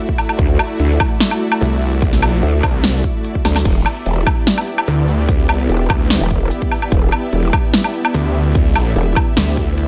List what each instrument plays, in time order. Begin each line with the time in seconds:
Already playing: supersaw synth A3 E4 F#4 D5 E5
0.09 kick
0.18 open hi-hat, low woodblock
0.29 low woodblock
0.39 wobble bass D2, kick, closed hi-hat
0.59 closed hi-hat, low woodblock
0.80 wobble bass D2, closed hi-hat
1.00 kick, open hi-hat, low woodblock
1.20 snare, closed hi-hat
1.31 low woodblock
1.41 closed hi-hat
1.52 low woodblock
1.61 detuned saw bass C2, closed hi-hat
1.82 open hi-hat
2.02 kick, closed hi-hat
2.13 snare
2.18 detuned saw bass B1
2.22 closed hi-hat, low woodblock
2.43 wobble bass D2, closed hi-hat
2.63 detuned saw bass C2, kick, open hi-hat, low woodblock
2.84 snare, closed hi-hat
3.04 kick, closed hi-hat
3.25 closed hi-hat
3.35 kick
3.45 wobble bass D2, snare, open hi-hat, low woodblock
3.56 snare, low woodblock
3.65 wobble bass E1, supersaw synth B3 E4 G4 E5, kick, closed hi-hat, crash
3.86 closed hi-hat, low woodblock
4.06 wobble bass E1, closed hi-hat
4.27 kick, open hi-hat, low woodblock
4.47 snare, closed hi-hat
4.58 low woodblock
4.67 closed hi-hat
4.78 low woodblock
4.88 detuned saw bass D2, closed hi-hat
5.08 open hi-hat
5.29 kick, closed hi-hat
5.45 detuned saw bass C#2
5.49 closed hi-hat, low woodblock
5.69 wobble bass E1, closed hi-hat
5.90 detuned saw bass D2, kick, open hi-hat, low woodblock
6.10 snare, closed hi-hat
6.21 wobble bass E1
6.31 kick, closed hi-hat
6.51 closed hi-hat
6.62 kick
6.72 open hi-hat, low woodblock
6.82 low woodblock
6.92 wobble bass E1, kick, closed hi-hat
7.12 closed hi-hat, low woodblock
7.33 wobble bass E1, closed hi-hat
7.53 kick, open hi-hat, low woodblock
7.74 snare, closed hi-hat
7.84 low woodblock
7.94 closed hi-hat
8.05 low woodblock
8.14 detuned saw bass D2, closed hi-hat
8.35 open hi-hat
8.55 kick, closed hi-hat
8.76 closed hi-hat, low woodblock
8.96 wobble bass E1, closed hi-hat
9.16 kick, open hi-hat, low woodblock
9.37 detuned saw bass D2, snare, closed hi-hat
9.57 kick, closed hi-hat
9.78 closed hi-hat